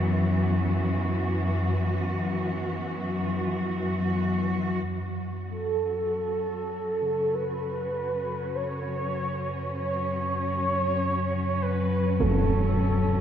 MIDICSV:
0, 0, Header, 1, 6, 480
1, 0, Start_track
1, 0, Tempo, 500000
1, 12679, End_track
2, 0, Start_track
2, 0, Title_t, "Soft synth lead"
2, 0, Program_c, 0, 80
2, 5286, Note_on_c, 0, 69, 100
2, 7049, Note_on_c, 0, 71, 104
2, 7064, Note_off_c, 0, 69, 0
2, 8209, Note_on_c, 0, 73, 110
2, 8223, Note_off_c, 0, 71, 0
2, 9384, Note_off_c, 0, 73, 0
2, 9401, Note_on_c, 0, 73, 114
2, 11156, Note_on_c, 0, 71, 94
2, 11171, Note_off_c, 0, 73, 0
2, 11712, Note_on_c, 0, 69, 84
2, 11726, Note_off_c, 0, 71, 0
2, 12679, Note_off_c, 0, 69, 0
2, 12679, End_track
3, 0, Start_track
3, 0, Title_t, "Cello section"
3, 0, Program_c, 1, 48
3, 0, Note_on_c, 1, 42, 77
3, 0, Note_on_c, 1, 52, 80
3, 0, Note_on_c, 1, 59, 75
3, 0, Note_on_c, 1, 66, 62
3, 4673, Note_off_c, 1, 42, 0
3, 4681, Note_off_c, 1, 52, 0
3, 4692, Note_on_c, 1, 54, 66
3, 5207, Note_on_c, 1, 61, 84
3, 6302, Note_off_c, 1, 59, 0
3, 12679, Note_off_c, 1, 54, 0
3, 12679, Note_off_c, 1, 61, 0
3, 12679, Note_off_c, 1, 66, 0
3, 12679, End_track
4, 0, Start_track
4, 0, Title_t, "Kettle gongs"
4, 0, Program_c, 2, 14
4, 6737, Note_on_c, 2, 49, 47
4, 12679, Note_off_c, 2, 49, 0
4, 12679, End_track
5, 0, Start_track
5, 0, Title_t, "Synth drone"
5, 0, Program_c, 3, 95
5, 0, Note_on_c, 3, 42, 71
5, 0, Note_on_c, 3, 54, 72
5, 4682, Note_off_c, 3, 54, 0
5, 4685, Note_off_c, 3, 42, 0
5, 4694, Note_on_c, 3, 54, 73
5, 4697, Note_on_c, 3, 42, 72
5, 12679, Note_off_c, 3, 42, 0
5, 12679, Note_off_c, 3, 54, 0
5, 12679, End_track
6, 0, Start_track
6, 0, Title_t, "Impact"
6, 0, Program_c, 4, 103
6, 11713, Note_on_c, 4, 60, 70
6, 11941, Note_off_c, 4, 60, 0
6, 12679, End_track
0, 0, End_of_file